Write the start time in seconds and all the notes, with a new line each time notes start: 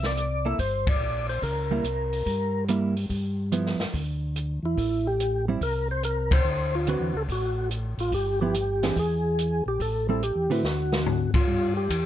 Already playing: C2
0.03 D5, snare
0.17 closed hi-hat
0.45 A#3 E4 A4 E5
0.58 G1 C5, kick, open hi-hat
0.87 D5, kick, ride
1.00 A#1
1.29 C5, open hi-hat
1.42 C#2 A#4, kick, open hi-hat
1.71 G3 A#3 E4
1.84 C2, closed hi-hat
2.13 open hi-hat
2.26 G2, kick, open hi-hat
2.68 G3 A#3 E4, closed hi-hat
2.97 open hi-hat
3.09 G2, kick, open hi-hat
3.52 F3 B3 E4, closed hi-hat
3.66 snare
3.79 G2, snare, open hi-hat
3.94 D2, kick, open hi-hat
4.36 closed hi-hat
4.63 E2 E4
4.78 A1, kick, open hi-hat
5.07 G4
5.20 closed hi-hat
5.48 G3 C4 E4
5.61 C2 A#4, kick, open hi-hat
5.91 C5
6.03 A#4, closed hi-hat
6.31 C5, kick, ride
6.44 D2
6.75 F4
6.87 D3 C4 F#4 B4, closed hi-hat
7.00 E2
7.14 C#2 A4
7.29 A1 F#4, kick, open hi-hat
7.71 closed hi-hat
7.98 A1 F4, open hi-hat
8.12 G1 G4, kick, open hi-hat
8.41 F3 B3 E4 G4
8.54 closed hi-hat
8.83 E3 C4 D4 G#4, snare, open hi-hat
8.96 E2 G#4, kick, open hi-hat
9.39 closed hi-hat
9.66 A#1 G4
9.79 A1 A4, kick, open hi-hat
10.09 G3 C4 E4 A4
10.23 G4, closed hi-hat
10.35 E2
10.49 A2 D3 C4 E4 F#4 B4, open hi-hat
10.63 D2 F#4, snare
10.92 snare
11.06 floor tom
11.33 D2 F4, kick, ride
11.47 G2
11.77 G4
11.89 E2, kick, hi-hat pedal, ride